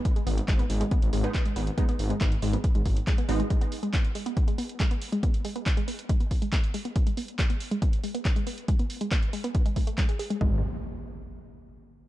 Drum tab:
HH |xxoxxxoxxxoxxxox|xxoxxxoxxxoxxxox|xxoxxxoxxxoxxxox|xxoxxxoxxxoxxxox|
CP |----x-------x---|----x-------x---|----x-------x---|----x-------x---|
BD |o---o---o---o---|o---o---o-o-o---|o---o---o---o---|o---o---o-o-o---|

HH |xxoxxxoxxxoxxxox|xxoxxxoxxxoxxxox|----------------|
CP |----x-------x---|----x-------x---|----------------|
BD |o---o---o---o---|o---o---o-o-o---|o---------------|